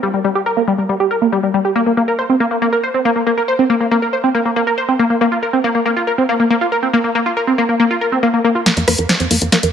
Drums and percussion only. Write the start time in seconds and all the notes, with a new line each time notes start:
8.66 snare, closed hi-hat
8.77 closed hi-hat
8.88 cross-stick, open hi-hat
8.99 closed hi-hat
9.09 snare, closed hi-hat
9.20 closed hi-hat
9.31 open hi-hat
9.42 closed hi-hat
9.52 snare, closed hi-hat
9.63 closed hi-hat